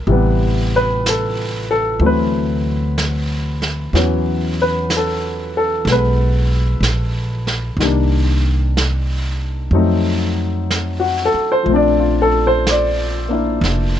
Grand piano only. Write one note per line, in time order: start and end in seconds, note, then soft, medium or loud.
0.00 0.11 A#3 medium
0.07 2.00 C3 medium
0.07 1.99 E3 soft
0.07 2.02 G3 medium
0.12 2.03 B3 medium
0.76 1.05 B4 medium
1.09 1.69 A4 medium
1.71 2.01 A4 medium
2.01 3.93 E3 soft
2.01 3.92 F#3 soft
2.01 3.93 A3 soft
2.01 3.93 C4 medium
2.06 2.95 B4 medium
3.94 7.80 E3 medium
3.94 7.79 F#3 medium
3.94 5.88 B3 medium
3.94 7.80 C#4 medium
4.62 4.90 B4 medium
4.97 5.56 A4 medium
5.57 5.87 A4 medium
5.87 7.79 G#3 soft
5.87 7.81 B3 soft
5.92 6.81 B4 medium
7.79 9.73 D#3 medium
7.79 9.74 G3 soft
7.79 9.74 A#3 soft
7.84 9.75 D4 medium
9.73 11.69 F#3 medium
9.73 11.65 A3 medium
9.73 11.68 C4 soft
9.73 11.69 D#4 medium
11.00 11.33 F#4 medium
11.25 11.46 A4 medium
11.52 11.68 C5 medium
11.63 14.00 F3 medium
11.63 14.00 A3 medium
11.70 14.00 C4 medium
11.70 13.29 D4 medium
11.76 12.04 D5 medium
12.00 12.32 F4 medium
12.22 12.43 A4 medium
12.47 12.64 C5 medium
12.70 14.00 D5 medium
13.29 14.00 A#3 soft
13.29 14.00 D4 soft
13.29 14.00 E4 soft